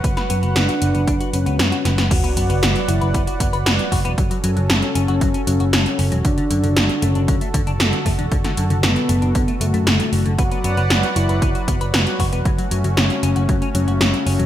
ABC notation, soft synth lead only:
X:1
M:4/4
L:1/8
Q:1/4=116
K:Bdor
V:1 name="Soft synth lead"
z2 D3 C3 | F3 E z4 | z2 C3 C3 | D3 C z4 |
z2 B,3 A,3 | F3 E z4 | z2 C3 C3 |]